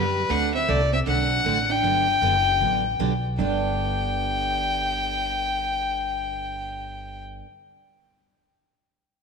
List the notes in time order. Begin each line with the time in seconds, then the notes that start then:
Already playing: F#2 G3 G4 B4
0.29 D2 D3 A3 C4 D4 F#4 A4 F#5
0.54 C4 E5
0.68 C2 D3 A3 C4 F#4 A4 D5
0.93 C4 E5
1.06 B1 D3 A3 C4 D4 F#4 A4 F#5
1.44 A1 D3 A3 C4 F#4 A4
1.70 D4 G5
1.83 G1 D3 F#3 B3 D4 G4
2.22 F#1 D3 F#3 B3 D4 G4
2.61 A1 D3 F#3 B3 D4 G4
2.99 B1 D3 F#3 B3 D4 G4
3.38 G1 G2 D3 B3 D4 G4 G5